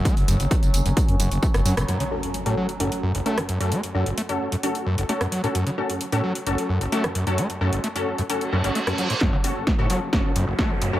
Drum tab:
HH |xooxxxoxxxoxxxox|xx-xxx-xxx-xxxxx|xx-xxx-xxx-xxxxx|xx-xxx-xxx-xxxxx|
TB |xxxxxxxxx-xxxxxx|----------------|----------------|----------------|
SD |-------------r-r|-------------r--|-------------r--|-------------r--|
BD |o---o---o---o---|----------------|----------------|----------------|

HH |xx-xxx-xxx-xxxxx|--o---o---o---o-|
TB |----------------|----------------|
SD |-------------r--|o---o---o---o---|
BD |----------------|o---o---o---o---|